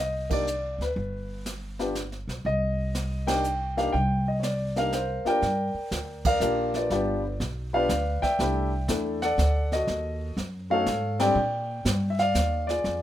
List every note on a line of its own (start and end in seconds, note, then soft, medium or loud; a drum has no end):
0.00 0.76 C2 medium
0.00 0.32 D#5 medium
0.30 0.45 A#3 soft
0.30 0.45 D4 soft
0.30 0.45 D#4 soft
0.30 0.45 G4 soft
0.30 0.82 D5 medium
0.30 kick medium
0.30 ride medium
0.47 hi-hat pedal soft
0.78 0.94 D2 medium
0.78 1.43 B4 medium
0.78 snare soft
0.96 2.25 G1 medium
0.96 brush sweep soft
0.96 kick soft
1.46 snare soft
1.46 hi-hat pedal soft
1.79 1.94 B3 medium
1.79 1.94 D4 medium
1.79 1.94 F4 soft
1.79 1.94 G4 medium
1.79 snare soft
1.95 snare medium
1.95 hi-hat pedal soft
2.12 snare soft
2.27 2.43 B1 medium
2.27 snare soft
2.45 3.90 C2 medium
2.45 3.24 D#5 medium
2.45 brush sweep soft
2.45 kick soft
2.95 snare medium
2.95 hi-hat pedal soft
3.27 3.42 A#3 soft
3.27 3.42 D4 medium
3.27 3.42 D#4 medium
3.27 3.43 G4 medium
3.27 3.74 G5 medium
3.27 snare medium
3.27 ride medium
3.44 hi-hat pedal soft
3.77 3.92 A#3 medium
3.77 3.92 D4 soft
3.77 3.92 D#4 soft
3.77 3.92 G4 medium
3.77 3.94 F5 medium
3.77 snare soft
3.93 5.22 C2 medium
3.93 4.27 G5 medium
3.93 brush sweep soft
3.93 kick soft
4.28 4.38 D#5 medium
4.40 4.44 C#5 soft
4.40 4.94 D5 medium
4.40 snare medium
4.40 hi-hat pedal soft
4.76 4.91 A#3 soft
4.76 4.91 D4 soft
4.76 4.91 D#4 soft
4.76 4.92 G4 medium
4.76 5.27 A#4 medium
4.76 5.23 F5 medium
4.76 snare soft
4.92 5.32 C5 medium
4.92 snare soft
4.92 hi-hat pedal soft
5.25 5.40 A#3 medium
5.25 5.40 D4 soft
5.25 5.41 F4 soft
5.25 5.41 G4 soft
5.25 6.22 A#4 medium
5.25 6.22 D5 medium
5.25 6.22 G5 medium
5.25 muted upright bass stroke soft
5.25 snare soft
5.42 5.73 G2 medium
5.42 brush sweep soft
5.42 kick soft
5.42 snare soft
5.74 muted upright bass stroke soft
5.91 6.40 D2 medium
5.91 kick soft
5.91 snare medium
5.91 hi-hat pedal medium
6.25 6.88 A#4 medium
6.25 6.74 D5 medium
6.25 6.72 F5 loud
6.25 kick medium
6.25 ride medium
6.40 6.89 A#1 medium
6.40 6.91 A#3 medium
6.40 6.90 D4 soft
6.40 6.75 F4 medium
6.40 6.91 G4 medium
6.40 hi-hat pedal medium
6.74 6.90 F4 soft
6.74 7.38 B4 soft
6.74 7.37 D5 medium
6.74 snare soft
6.90 7.39 G1 medium
6.90 7.21 B3 medium
6.90 7.21 D4 medium
6.90 7.21 F4 medium
6.90 7.21 G4 medium
6.90 brush sweep soft
6.90 kick soft
6.90 snare soft
7.40 7.88 B1 medium
7.40 kick soft
7.40 snare soft
7.73 7.88 B3 medium
7.73 7.88 D4 medium
7.73 7.89 F4 medium
7.73 7.89 G4 medium
7.73 8.36 B4 medium
7.73 8.22 D5 medium
7.73 8.20 F5 loud
7.89 8.20 D2 medium
7.89 kick soft
7.89 snare medium
7.89 hi-hat pedal medium
8.22 9.18 D5 medium
8.22 9.18 E5 medium
8.22 9.18 G5 medium
8.22 muted upright bass stroke soft
8.22 kick soft
8.22 snare soft
8.39 8.87 C2 medium
8.39 8.69 A3 medium
8.39 8.69 D4 medium
8.39 8.70 E4 medium
8.39 8.70 G4 medium
8.39 brush sweep soft
8.39 kick soft
8.39 snare soft
8.88 9.37 E2 medium
8.88 9.19 A3 medium
8.88 9.19 D4 medium
8.88 9.19 E4 medium
8.88 9.19 A4 medium
8.88 kick soft
8.88 snare medium
8.88 hi-hat pedal medium
9.22 9.73 A4 medium
9.22 9.85 D5 medium
9.22 9.73 F#5 loud
9.22 snare soft
9.38 9.86 D2 medium
9.38 kick soft
9.38 snare medium
9.38 hi-hat pedal medium
9.72 10.35 F#4 soft
9.72 10.35 A4 soft
9.72 10.34 D#5 medium
9.72 snare soft
9.87 10.36 D#2 medium
9.87 brush sweep soft
9.87 kick soft
9.87 snare soft
10.37 10.85 F#2 medium
10.37 kick soft
10.37 snare soft
10.70 10.85 A3 medium
10.70 10.85 C#4 soft
10.70 10.86 D#4 soft
10.70 10.85 F#4 medium
10.70 11.34 A4 medium
10.70 11.34 C#5 medium
10.70 11.22 F5 loud
10.86 11.35 G#2 medium
10.86 kick soft
10.86 snare medium
10.86 hi-hat pedal soft
11.19 11.34 G3 medium
11.19 11.35 C4 medium
11.19 11.35 D4 medium
11.19 11.35 G4 medium
11.19 12.07 D5 medium
11.19 12.13 G5 medium
11.19 snare medium
11.19 ride medium
11.35 11.84 A#2 medium
11.35 brush sweep medium
11.85 12.33 G2 medium
11.85 kick soft
11.85 snare medium
11.85 hi-hat pedal soft
12.10 12.19 E5 medium
12.19 12.66 D5 medium
12.19 12.70 F5 loud
12.19 snare soft
12.35 12.83 D#2 medium
12.35 kick soft
12.35 snare medium
12.35 hi-hat pedal medium
12.67 13.02 F4 soft
12.67 13.02 G#4 soft
12.67 13.02 D5 medium
12.67 snare soft
12.84 13.02 F2 medium
12.84 brush sweep soft
12.84 kick soft
12.84 snare soft